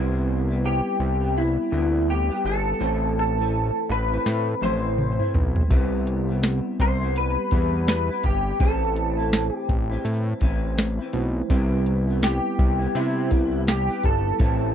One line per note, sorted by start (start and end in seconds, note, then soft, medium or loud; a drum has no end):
0.00 0.81 C2 medium
0.00 0.49 C3 medium
0.00 0.50 G3 medium
0.00 2.76 G3 medium
0.00 0.49 B3 medium
0.00 2.77 C4 medium
0.00 0.47 E4 medium
0.00 2.78 E4 medium
0.00 2.78 B4 medium
0.48 1.23 G3 soft
0.48 1.22 B3 soft
0.48 1.21 E4 medium
0.66 1.39 G4 medium
1.00 1.58 C2 medium
1.21 1.71 G3 soft
1.21 1.72 B3 soft
1.21 1.72 E4 medium
1.38 2.11 E4 medium
1.71 2.30 D2 medium
1.71 2.30 C3 medium
1.71 2.30 G3 medium
1.71 2.30 B3 medium
1.71 2.28 E4 medium
2.10 2.46 G4 medium
2.29 2.80 G3 soft
2.29 2.81 B3 soft
2.29 2.80 E4 soft
2.45 2.74 G1 medium
2.45 3.14 A4 medium
2.79 3.71 A1 medium
2.79 3.38 A2 medium
2.79 3.39 E3 medium
2.79 5.66 A3 medium
2.79 5.66 C4 medium
2.79 3.39 C4 medium
2.79 3.37 E4 medium
2.79 5.67 E4 soft
2.84 5.68 A4 medium
3.19 3.91 A4 medium
3.38 4.14 E3 soft
3.38 4.12 C4 soft
3.38 4.10 E4 soft
3.89 4.18 A1 loud
3.89 4.63 B4 medium
4.10 4.61 E3 soft
4.10 4.62 C4 soft
4.10 4.61 E4 soft
4.26 4.55 A2 loud
4.26 snare soft
4.61 5.20 A1 medium
4.61 5.19 A2 medium
4.61 5.20 E3 medium
4.61 5.20 C4 medium
4.61 5.18 E4 medium
4.61 5.31 C5 loud
4.61 high tom medium
4.98 mid tom medium
5.19 5.71 E3 soft
5.19 5.71 C4 soft
5.19 5.70 E4 medium
5.19 mid tom medium
5.34 5.64 B1 medium
5.34 floor tom medium
5.56 floor tom loud
5.68 6.61 C2 medium
5.68 6.29 C3 medium
5.68 8.55 G3 medium
5.68 6.29 G3 medium
5.68 6.29 B3 medium
5.68 8.56 C4 medium
5.68 8.57 E4 medium
5.68 kick loud
5.68 closed hi-hat medium
5.73 6.27 E4 medium
5.73 8.58 G4 medium
6.07 closed hi-hat medium
6.28 7.03 G3 soft
6.28 7.01 B3 soft
6.28 7.00 E4 medium
6.43 snare loud
6.43 closed hi-hat medium
6.80 7.37 C2 medium
6.80 7.14 C5 loud
6.80 kick medium
6.80 closed hi-hat medium
7.00 7.51 G3 soft
7.00 7.52 B3 soft
7.00 7.51 E4 soft
7.16 7.88 B4 loud
7.16 closed hi-hat medium
7.51 8.10 E2 loud
7.51 8.09 C3 medium
7.51 8.10 G3 medium
7.51 8.10 B3 medium
7.51 8.08 E4 medium
7.51 kick medium
7.51 closed hi-hat medium
7.88 8.25 B4 medium
7.88 snare loud
7.88 closed hi-hat medium
8.09 8.60 G3 soft
8.09 8.61 B3 soft
8.09 8.60 E4 soft
8.23 8.53 G1 medium
8.23 8.61 G4 medium
8.23 kick medium
8.23 closed hi-hat medium
8.59 9.50 A1 loud
8.59 9.18 A2 medium
8.59 9.19 E3 medium
8.59 11.09 A3 medium
8.59 11.10 C4 medium
8.59 9.18 C4 medium
8.59 11.11 E4 soft
8.59 9.16 E4 medium
8.59 9.55 A4 medium
8.59 kick loud
8.59 closed hi-hat medium
8.64 8.70 B4 soft
8.70 11.15 C5 medium
8.96 closed hi-hat medium
9.18 9.93 E3 soft
9.18 9.92 C4 soft
9.18 9.90 E4 soft
9.33 snare loud
9.33 closed hi-hat medium
9.55 10.01 G4 medium
9.69 9.98 A1 medium
9.69 kick medium
9.69 closed hi-hat medium
9.90 10.41 E3 soft
9.90 10.42 C4 medium
9.90 10.41 E4 medium
10.05 10.34 A2 loud
10.05 closed hi-hat medium
10.40 10.99 A1 medium
10.40 10.99 A2 medium
10.40 11.00 E3 medium
10.40 11.00 C4 medium
10.40 10.98 E4 medium
10.40 kick medium
10.40 closed hi-hat medium
10.78 snare loud
10.78 closed hi-hat medium
10.99 11.50 E3 soft
10.99 11.51 C4 soft
10.99 11.50 E4 soft
11.13 11.43 B1 medium
11.13 11.50 A3 medium
11.13 11.49 C4 soft
11.13 11.51 E4 medium
11.13 11.51 C5 medium
11.13 closed hi-hat medium
11.48 12.40 C2 loud
11.48 12.08 C3 medium
11.48 14.35 G3 medium
11.48 12.08 G3 medium
11.48 12.08 B3 medium
11.48 14.36 C4 medium
11.48 14.37 E4 medium
11.48 kick loud
11.48 closed hi-hat loud
11.52 12.06 E4 medium
11.52 14.38 B4 medium
11.86 closed hi-hat medium
12.07 12.82 G3 soft
12.07 12.80 B3 soft
12.07 12.79 E4 medium
12.23 12.98 G4 medium
12.23 snare loud
12.23 closed hi-hat medium
12.59 12.88 C2 loud
12.59 kick medium
12.59 closed hi-hat medium
12.79 13.30 G3 soft
12.79 13.31 B3 soft
12.79 13.31 E4 medium
12.95 13.33 C3 loud
12.95 13.70 E4 medium
12.95 closed hi-hat loud
13.30 13.89 C2 medium
13.30 13.89 C3 medium
13.30 13.89 G3 medium
13.30 13.89 B3 medium
13.30 13.87 E4 medium
13.30 kick medium
13.30 closed hi-hat medium
13.68 14.05 G4 medium
13.68 snare loud
13.68 closed hi-hat medium
13.88 14.40 G3 soft
13.88 14.40 B3 soft
13.88 14.39 E4 medium
14.03 14.33 G1 medium
14.03 14.75 A4 medium
14.03 kick medium
14.03 closed hi-hat medium
14.38 14.75 A1 loud
14.38 14.75 A2 medium
14.38 14.75 E3 medium
14.38 14.75 A3 medium
14.38 14.75 C4 soft
14.38 14.75 C4 medium
14.38 14.75 E4 medium
14.38 14.75 E5 medium
14.38 kick loud
14.38 closed hi-hat medium
14.43 14.75 C5 medium